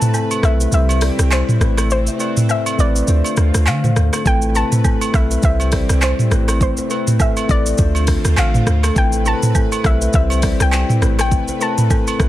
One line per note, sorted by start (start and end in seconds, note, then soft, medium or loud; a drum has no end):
0.00 3.04 C3 medium
0.00 0.42 A3 medium
0.00 0.70 A3 medium
0.00 0.43 C4 medium
0.00 0.44 E4 medium
0.00 0.45 B4 medium
0.00 0.71 B4 medium
0.00 0.08 C5 medium
0.00 0.46 A5 loud
0.00 mid tom medium
0.00 shaker loud
0.14 0.23 A4 medium
0.14 low woodblock medium
0.14 shaker medium
0.31 high agogo medium
0.31 shaker medium
0.42 0.67 B1 loud
0.42 0.72 A3 medium
0.42 0.71 C4 medium
0.42 0.72 E4 medium
0.42 0.52 A4 medium
0.42 0.73 B4 medium
0.42 0.73 E5 loud
0.42 cross-stick loud
0.42 shaker soft
0.60 0.67 B4 medium
0.60 shaker medium
0.71 1.10 C2 loud
0.71 1.55 G3 medium
0.71 1.55 C4 medium
0.71 1.60 C4 medium
0.71 1.60 E4 medium
0.71 1.55 E4 medium
0.71 1.60 G4 medium
0.71 1.56 C5 medium
0.71 1.34 E5 medium
0.71 shaker medium
0.89 0.96 C5 medium
0.89 high agogo medium
0.89 shaker medium
1.01 1.11 D5 medium
1.01 cross-stick medium
1.01 open hi-hat medium
1.01 shaker medium
1.19 1.43 C2 medium
1.19 cross-stick loud
1.19 shaker medium
1.31 1.47 C5 medium
1.31 1.91 C5 loud
1.31 clap medium
1.31 high agogo medium
1.31 low woodblock medium
1.31 shaker medium
1.49 mid tom medium
1.49 shaker soft
1.60 2.09 A1 loud
1.60 2.15 A3 medium
1.60 4.23 A3 medium
1.60 2.16 C4 medium
1.60 3.07 C4 medium
1.60 2.16 E4 medium
1.60 2.17 B4 medium
1.60 cross-stick loud
1.60 shaker medium
1.77 cross-stick medium
1.77 high agogo medium
1.77 shaker loud
1.90 2.52 C5 loud
1.90 shaker medium
2.07 2.14 E5 medium
2.07 shaker medium
2.18 2.74 A3 medium
2.18 2.74 C4 medium
2.18 2.75 E4 medium
2.18 2.75 B4 medium
2.18 2.29 D5 medium
2.18 high agogo medium
2.18 shaker medium
2.37 mid tom medium
2.37 shaker loud
2.49 2.58 C5 medium
2.49 2.64 E5 loud
2.49 low woodblock medium
2.49 shaker medium
2.66 high agogo medium
2.66 shaker medium
2.77 3.02 A1 loud
2.77 3.06 A3 medium
2.77 3.08 C4 medium
2.77 3.08 E4 medium
2.77 2.88 B4 medium
2.77 3.08 B4 medium
2.77 3.70 D5 loud
2.77 shaker soft
2.96 shaker medium
3.07 3.22 D2 loud
3.07 4.24 D3 medium
3.07 4.18 A3 medium
3.07 4.25 C4 medium
3.07 4.18 D4 medium
3.07 4.24 F4 medium
3.07 4.18 F4 medium
3.07 4.19 C5 medium
3.07 3.23 D5 medium
3.07 shaker medium
3.24 high agogo medium
3.24 shaker medium
3.37 3.51 D2 loud
3.37 cross-stick medium
3.37 shaker medium
3.54 3.68 D2 medium
3.54 cross-stick loud
3.54 shaker medium
3.66 3.91 D3 loud
3.66 4.28 F5 medium
3.66 clap medium
3.66 high agogo medium
3.66 low woodblock medium
3.66 shaker medium
3.84 3.90 C5 medium
3.84 mid tom medium
3.84 shaker soft
3.96 4.10 D2 medium
3.96 cross-stick loud
3.96 shaker medium
4.13 4.20 A4 medium
4.13 cross-stick loud
4.13 high agogo medium
4.13 shaker loud
4.24 4.63 A1 loud
4.24 7.75 C3 medium
4.24 4.53 A3 medium
4.24 5.42 A3 medium
4.24 4.53 C4 medium
4.24 4.53 E4 medium
4.24 4.35 A4 medium
4.24 5.42 B4 medium
4.24 4.54 B4 medium
4.24 4.40 G5 loud
4.24 kick loud
4.24 shaker medium
4.42 shaker medium
4.54 5.09 A3 medium
4.54 5.10 C4 medium
4.54 5.10 E4 medium
4.54 4.64 B4 medium
4.54 5.11 B4 medium
4.54 5.10 A5 loud
4.54 high agogo medium
4.54 shaker medium
4.72 4.79 C5 medium
4.72 mid tom medium
4.72 shaker loud
4.84 4.93 A4 medium
4.84 kick medium
4.84 low woodblock medium
4.84 shaker medium
5.01 high agogo medium
5.01 shaker medium
5.13 5.38 B1 medium
5.13 5.43 A3 medium
5.13 5.42 C4 medium
5.13 5.42 E4 medium
5.13 5.23 A4 medium
5.13 5.44 B4 medium
5.13 5.43 E5 medium
5.13 kick medium
5.13 cross-stick loud
5.13 shaker soft
5.31 5.38 B4 medium
5.31 shaker medium
5.42 5.81 C2 loud
5.42 6.25 G3 medium
5.42 6.26 C4 medium
5.42 6.31 C4 medium
5.42 6.31 E4 medium
5.42 6.26 E4 medium
5.42 6.31 G4 medium
5.42 6.26 C5 medium
5.42 6.04 E5 medium
5.42 kick loud
5.42 shaker medium
5.60 5.73 C5 medium
5.60 high agogo medium
5.60 shaker medium
5.72 5.82 D5 medium
5.72 kick medium
5.72 cross-stick medium
5.72 open hi-hat medium
5.72 shaker medium
5.89 6.14 C2 loud
5.89 cross-stick loud
5.89 shaker loud
6.01 6.17 C5 medium
6.01 6.61 C5 medium
6.01 clap medium
6.01 high agogo medium
6.01 low woodblock medium
6.01 shaker medium
6.19 mid tom medium
6.19 shaker medium
6.30 6.79 A1 loud
6.30 6.86 A3 medium
6.30 10.10 A3 medium
6.30 6.86 C4 medium
6.30 7.77 C4 medium
6.30 6.87 E4 medium
6.30 6.87 B4 medium
6.30 cross-stick loud
6.30 shaker medium
6.48 cross-stick medium
6.48 high agogo medium
6.48 shaker loud
6.61 7.22 C5 medium
6.61 kick loud
6.61 shaker medium
6.77 6.85 C5 medium
6.77 shaker medium
6.89 7.45 A3 medium
6.89 7.45 C4 medium
6.89 7.45 E4 medium
6.89 6.99 B4 medium
6.89 7.46 B4 medium
6.89 high agogo medium
6.89 shaker medium
7.07 mid tom medium
7.07 shaker loud
7.20 7.29 A4 medium
7.20 7.51 E5 loud
7.20 kick loud
7.20 low woodblock medium
7.20 shaker medium
7.37 high agogo medium
7.37 shaker medium
7.48 7.73 A1 loud
7.48 7.76 A3 medium
7.48 7.78 C4 medium
7.48 7.79 E4 medium
7.48 7.58 A4 medium
7.48 7.79 B4 medium
7.48 8.41 D5 loud
7.48 kick loud
7.48 shaker soft
7.66 shaker medium
7.77 8.16 D2 loud
7.77 8.95 D3 medium
7.77 8.88 A3 medium
7.77 8.95 C4 medium
7.77 8.88 D4 medium
7.77 8.95 F4 medium
7.77 8.89 F4 medium
7.77 7.94 C5 medium
7.77 8.89 C5 medium
7.77 kick loud
7.77 shaker medium
7.95 high agogo medium
7.95 shaker medium
8.07 kick medium
8.07 cross-stick medium
8.07 open hi-hat medium
8.07 shaker medium
8.25 8.35 D2 loud
8.25 cross-stick loud
8.25 shaker medium
8.36 8.61 A1 loud
8.36 8.93 F5 loud
8.36 clap medium
8.36 high agogo medium
8.36 low woodblock medium
8.36 shaker medium
8.54 8.61 C5 medium
8.54 mid tom medium
8.54 shaker medium
8.67 8.91 D2 medium
8.67 cross-stick loud
8.67 shaker medium
8.83 8.90 A4 medium
8.83 cross-stick medium
8.83 high agogo medium
8.83 shaker loud
8.95 9.34 A1 loud
8.95 12.29 C3 medium
8.95 9.23 A3 medium
8.95 9.23 C4 medium
8.95 9.24 E4 medium
8.95 9.05 A4 medium
8.95 10.13 B4 medium
8.95 9.24 B4 medium
8.95 9.27 G5 loud
8.95 kick loud
8.95 shaker medium
9.12 shaker medium
9.24 9.80 A3 medium
9.24 9.80 C4 medium
9.24 9.81 E4 medium
9.24 9.34 A#4 medium
9.24 9.35 B4 medium
9.24 9.87 A5 loud
9.24 high agogo medium
9.24 shaker medium
9.33 9.84 B4 medium
9.43 9.49 C5 medium
9.43 mid tom medium
9.43 shaker loud
9.55 9.64 A4 medium
9.55 kick medium
9.55 low woodblock medium
9.55 shaker medium
9.72 high agogo medium
9.72 shaker medium
9.83 10.08 B1 loud
9.83 10.13 A3 medium
9.83 10.12 C4 medium
9.83 10.13 E4 medium
9.83 9.93 A4 medium
9.83 10.15 B4 medium
9.83 10.14 E5 medium
9.83 kick loud
9.83 cross-stick loud
9.83 shaker soft
10.01 10.08 B4 medium
10.01 shaker medium
10.13 10.52 C2 loud
10.13 10.96 G3 medium
10.13 10.96 C4 medium
10.13 11.01 C4 medium
10.13 11.01 E4 medium
10.13 10.97 E4 medium
10.13 11.01 G4 medium
10.13 10.97 C5 medium
10.13 10.58 E5 medium
10.13 kick loud
10.13 shaker medium
10.30 10.37 C5 medium
10.30 high agogo medium
10.30 shaker medium
10.42 10.52 D5 medium
10.42 kick medium
10.42 cross-stick medium
10.42 open hi-hat medium
10.42 shaker medium
10.60 10.84 C2 loud
10.60 11.19 G5 loud
10.60 cross-stick loud
10.60 shaker loud
10.71 10.88 C5 medium
10.71 clap medium
10.71 high agogo medium
10.71 low woodblock medium
10.71 shaker medium
10.89 mid tom medium
10.89 shaker soft
11.01 11.50 A1 loud
11.01 11.57 A3 medium
11.01 12.29 A3 medium
11.01 11.57 C4 medium
11.01 11.57 E4 medium
11.01 12.29 B4 medium
11.01 11.58 B4 medium
11.01 cross-stick loud
11.01 shaker medium
11.19 11.63 G5 medium
11.19 cross-stick loud
11.19 high agogo medium
11.19 shaker loud
11.31 kick loud
11.31 shaker medium
11.48 11.55 C5 medium
11.48 shaker medium
11.59 12.15 A3 medium
11.59 12.16 C4 medium
11.59 12.16 E4 medium
11.59 11.69 A#4 medium
11.59 11.70 B4 medium
11.59 12.29 A5 medium
11.59 high agogo medium
11.59 shaker medium
11.68 12.20 B4 medium
11.78 mid tom medium
11.78 shaker loud
11.90 11.99 A4 medium
11.90 kick medium
11.90 low woodblock medium
11.90 shaker medium
12.07 high agogo medium
12.07 shaker medium
12.19 12.29 A1 loud
12.19 12.29 A3 medium
12.19 12.29 C4 medium
12.19 12.29 E4 medium
12.19 12.29 A4 medium
12.19 12.29 B4 medium
12.19 kick loud
12.19 cross-stick loud
12.19 shaker soft